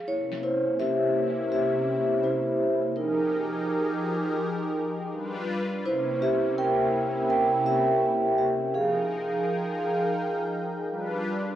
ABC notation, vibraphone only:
X:1
M:4/4
L:1/8
Q:"Swing 16ths" 1/4=83
K:Cphr
V:1 name="Vibraphone"
[=Ed] [Ec] [G=e]2 [Ge]2 [Ec]2 | [EB]3 z4 z | [=Ec] [G=e] [Bg]2 [Bg] [Ge]2 [Ge] | [Af]6- [Af] z |]